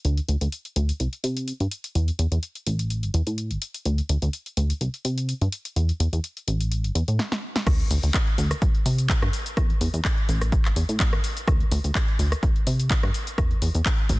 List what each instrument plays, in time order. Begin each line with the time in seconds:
0.05 analog synth bass D2, closed hi-hat
0.17 closed hi-hat
0.28 analog synth bass D2, closed hi-hat
0.41 analog synth bass D2, closed hi-hat
0.52 closed hi-hat
0.65 closed hi-hat
0.76 analog synth bass D2, closed hi-hat
0.89 closed hi-hat
1.00 analog synth bass C2, closed hi-hat
1.13 closed hi-hat
1.24 analog synth bass C3, closed hi-hat
1.37 closed hi-hat
1.48 closed hi-hat
1.60 analog synth bass G2, closed hi-hat
1.71 closed hi-hat
1.84 closed hi-hat
1.95 analog synth bass E2, closed hi-hat
2.08 closed hi-hat
2.19 analog synth bass E2, closed hi-hat
2.31 analog synth bass E2, closed hi-hat
2.43 closed hi-hat
2.55 closed hi-hat
2.67 analog synth bass A1, closed hi-hat
2.79 closed hi-hat
2.90 closed hi-hat
3.03 analog synth bass G1, closed hi-hat
3.14 analog synth bass E2, closed hi-hat
3.27 analog synth bass A2, closed hi-hat
3.38 closed hi-hat
3.51 analog synth bass G1, closed hi-hat
3.62 closed hi-hat
3.74 closed hi-hat
3.85 analog synth bass D2, closed hi-hat
3.98 closed hi-hat
4.09 analog synth bass D2, closed hi-hat
4.22 analog synth bass D2, closed hi-hat
4.33 closed hi-hat
4.46 closed hi-hat
4.57 analog synth bass D2, closed hi-hat
4.70 closed hi-hat
4.81 analog synth bass C2, closed hi-hat
4.94 closed hi-hat
5.05 analog synth bass C3, closed hi-hat
5.18 closed hi-hat
5.29 closed hi-hat
5.41 analog synth bass G2, closed hi-hat
5.52 closed hi-hat
5.65 closed hi-hat
5.76 analog synth bass E2, closed hi-hat
5.89 closed hi-hat
6.00 analog synth bass E2, closed hi-hat
6.13 analog synth bass E2, closed hi-hat
6.24 closed hi-hat
6.37 closed hi-hat
6.47 analog synth bass A1, closed hi-hat
6.60 closed hi-hat
6.72 closed hi-hat
6.84 analog synth bass G1, closed hi-hat
6.95 analog synth bass E2, closed hi-hat
7.08 analog synth bass A2, closed hi-hat
7.19 snare
7.32 snare
7.56 snare
7.66 analog synth bass D2, kick, cross-stick, closed hi-hat, crash, shaker
7.80 closed hi-hat
7.90 analog synth bass D2, open hi-hat, shaker
8.03 analog synth bass D2, closed hi-hat, shaker
8.14 kick, clap, closed hi-hat, shaker
8.27 closed hi-hat
8.38 analog synth bass D2, open hi-hat, shaker
8.51 cross-stick, closed hi-hat, shaker
8.62 analog synth bass C2, kick, closed hi-hat, shaker
8.75 closed hi-hat
8.85 analog synth bass C3, open hi-hat, shaker
8.98 closed hi-hat, shaker
9.09 kick, clap, closed hi-hat, shaker
9.22 analog synth bass G2, cross-stick, closed hi-hat
9.33 open hi-hat, shaker
9.46 closed hi-hat, shaker
9.57 analog synth bass E2, kick, cross-stick, closed hi-hat, shaker
9.70 closed hi-hat
9.81 analog synth bass E2, open hi-hat, shaker
9.94 analog synth bass E2, closed hi-hat, shaker
10.05 kick, clap, closed hi-hat, shaker
10.18 closed hi-hat
10.29 analog synth bass A1, open hi-hat, shaker
10.41 cross-stick, closed hi-hat, shaker
10.52 kick, closed hi-hat, shaker
10.65 analog synth bass G1, clap, closed hi-hat
10.76 analog synth bass E2, open hi-hat, shaker
10.89 analog synth bass A2, closed hi-hat, shaker
11.00 kick, clap, closed hi-hat, shaker
11.13 analog synth bass G1, cross-stick, closed hi-hat
11.24 open hi-hat, shaker
11.37 closed hi-hat, shaker
11.47 analog synth bass D2, kick, cross-stick, closed hi-hat, shaker
11.60 closed hi-hat
11.72 analog synth bass D2, open hi-hat, shaker
11.84 analog synth bass D2, closed hi-hat, shaker
11.95 kick, clap, closed hi-hat, shaker
12.08 closed hi-hat
12.19 analog synth bass D2, open hi-hat, shaker
12.32 cross-stick, closed hi-hat, shaker
12.43 analog synth bass C2, kick, closed hi-hat, shaker
12.56 closed hi-hat
12.67 analog synth bass C3, open hi-hat, shaker
12.80 closed hi-hat, shaker
12.90 kick, clap, closed hi-hat, shaker
13.03 analog synth bass G2, cross-stick, closed hi-hat
13.14 open hi-hat, shaker
13.27 closed hi-hat, shaker
13.38 analog synth bass E2, kick, cross-stick, closed hi-hat, shaker
13.51 closed hi-hat
13.62 analog synth bass E2, open hi-hat, shaker
13.75 analog synth bass E2, closed hi-hat, shaker
13.86 kick, clap, closed hi-hat, shaker
13.98 closed hi-hat
14.09 analog synth bass A1, kick, open hi-hat, shaker